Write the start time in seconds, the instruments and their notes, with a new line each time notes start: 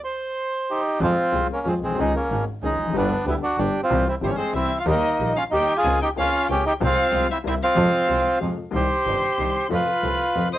0.04 bandoneon C5
0.70 bandoneon D#4 G4
0.99 upright piano F2 F3 G#3 C4 G#4, double bass F2, bandoneon C4 F4 G#4
1.03 bandoneon C4 F4
1.32 upright piano C2 C3 F3 G#3 C4 G#4, double bass C2, bandoneon C4 F4 G#4
1.52 bandoneon A#3 C#4
1.65 upright piano F2 F3 G#3 C4 G#4, double bass F2, bandoneon G#3 C4 F4 G#4
1.82 upright piano A#1, double bass B1, bandoneon G#3 C4
1.90 upright piano B1
1.95 upright piano C2, double bass C#2, bandoneon C#4 D#4 G#4
1.99 upright piano C#2 C#3 D#3 G#3 C#4 G#4, bandoneon G#3 D#4
2.15 bandoneon A#3 C#4
2.30 double bass G#1, upright piano G#1 G#2 D#3 G#3 C#4 G#4, bandoneon C#4 D#4 G#4
2.62 double bass C#2, upright piano C#2 C#3 D#3 G#3 C#4 G#4, bandoneon G#3 C#4 D#4 G#4
2.77 double bass F1
2.83 upright piano E2 F2
2.89 double bass G1, upright piano F#2
2.93 upright piano G1 G2 D3 G3 B3 G4, bandoneon B3 D4 G4
2.98 bandoneon D4
3.26 double bass D2, upright piano D2 D3 G3 B3 G4, bandoneon B3 D4 E4 G4
3.43 bandoneon D4 F#4
3.58 double bass G1, upright piano G1 G2 D3 G3 B3 G4, bandoneon B3 D4 G4
3.83 bandoneon C4 F4
3.90 upright piano C2 C3 E3 G3 C4 G4, double bass C2, bandoneon C4 E4 G4
4.08 bandoneon C4 E4
4.21 upright piano G1 G2 E3 G3 C4 G4, double bass G1, bandoneon G3 C4 E4 G4, violin C5
4.25 bandoneon C4, violin C#5
4.30 bandoneon C#4
4.37 bandoneon G#3 C4, violin C5
4.53 upright piano C2 C3 E3 G3 C4 G4, double bass C2, bandoneon C4 E4 G4, violin E5
4.79 bandoneon F4, violin F5
4.86 double bass D#2, upright piano D#2 D#3 G3 A#3 G4, bandoneon A#3 D#4 G4, violin D#5
5.19 double bass A#1, upright piano A#1 A#2 D#3 G3 A#3 G4, bandoneon A#3 D#4 G4
5.36 bandoneon C#4 F4, violin F5
5.51 double bass D#2, upright piano D#2 D#3 G3 A#3 G4, bandoneon A#3 D#4 G4, violin G5
5.77 bandoneon F4 G#4, violin G#5
5.84 double bass C#2, upright piano C#2 C#3 A#3 C4 F4, bandoneon A#3 C4 C#4
6.02 bandoneon D#4 G4, violin G5
6.16 upright piano C#2 C#3 A#3 C4 F4, double bass C#2, bandoneon A#3 C4 C#4 F4, violin F5
6.48 upright piano C#2 C#3 A#3 C4 F4, double bass C#2, bandoneon A#3 C4 C#4 G4, violin G5
6.66 bandoneon D#4 G4, violin G5
6.80 upright piano C2 C3 F3 G#3 F4, double bass C2, bandoneon G#3 C4 F4, violin F5
6.86 bandoneon F4
7.12 upright piano C2 C3 F3 G#3 F4, double bass C2, bandoneon G#3 C4 F4
7.31 bandoneon C4 E4, violin E5
7.44 upright piano C2 C3 G3 A#3 E4, double bass C2, bandoneon A#3 C4 E4, violin E5
7.48 bandoneon C4 E4
7.62 bandoneon C4 F4, violin F5
7.75 upright piano F2 C3 F3 G#3 F4, double bass F2, bandoneon G#3 C4 F4
8.08 upright piano C2 C3 F3 G#3 F4, double bass C2, bandoneon G#3 C4 F4
8.40 upright piano F2 C3 F3 G#3 F4, double bass F2, bandoneon G#3 C4 F4
8.71 upright piano C2 C3 D#3 G3 D#4, double bass C2, bandoneon G3 C4 D#4, violin C6
8.76 bandoneon G4 C5
9.05 upright piano G1 G2 C3 D#3 G3 D#4, double bass G1, bandoneon G3 C4 D#4
9.38 upright piano C2 C3 D#3 G3 D#4, double bass C2, bandoneon G3 C4 D#4
9.69 upright piano F2 C3 F3 A3 F4, double bass F2, bandoneon A3 C4 F4, violin B5
9.74 bandoneon F4 B4
10.02 double bass C2, upright piano C2 C3 F3 A3 F4, bandoneon A3 C4 F4
10.34 double bass F2, upright piano F2 C3 F3 A3 F4, bandoneon A3 C4 F4
10.53 bandoneon C5 D#5, violin D#6